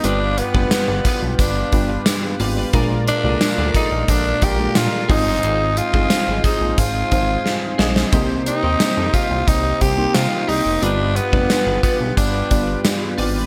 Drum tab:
HH |x-x-x-x-x-x-x-o-|x-x-x-x-x-x-x-o-|x-x-x-x-x-x-----|x-x-x-x-x-x-x-o-|
TB |----x-------x---|----x-------x---|----x-----------|----x-------x---|
SD |----o-------o---|----o-------o---|----o-------o-oo|----o-------o---|
BD |---o--o-o-o-----|o-----o-o-o---o-|---o--o-o-o-----|o-----o-o-o-----|

HH |x-x-x-x-x-x-x-o-|
TB |----x-------x---|
SD |----o-------o---|
BD |---o--o-o-o-----|